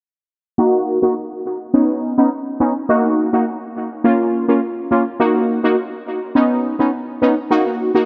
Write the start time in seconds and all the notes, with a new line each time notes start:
0.58 A#3 D#4 F#4
1.02 A#3 D#4 F#4
1.74 B3 C#4 D#4
2.18 B3 C#4 D#4
2.60 B3 C#4 D#4
2.89 A#3 D#4 F#4
3.33 A#3 D#4 F#4
4.04 A#3 C#4 F4
4.48 A#3 C#4 F4
4.91 A#3 C#4 F4
5.20 A#3 D#4 F#4
5.64 A#3 D#4 F#4
6.35 B3 C#4 D#4
6.79 B3 C#4 D#4
7.22 B3 C#4 D#4
7.50 A#3 D#4 F#4
7.95 A#3 D#4 F#4